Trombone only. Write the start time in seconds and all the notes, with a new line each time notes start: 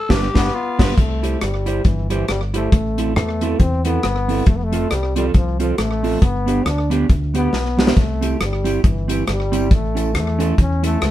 0.35 B3
0.98 A3
1.42 G3
1.85 E3
2.11 E3
2.29 G3
2.54 A3
3.16 A3
3.59 C4
3.85 B3
4.48 A3
4.56 B3
4.64 A3
4.92 G3
5.17 G3
5.35 F3
5.60 F3
5.79 A3
6.23 B3
6.66 D4
7.36 B3
7.98 A3
8.42 G3
8.86 E3
9.11 E3
9.29 G3
9.73 A3
10.17 A3
10.60 C#4
10.86 A3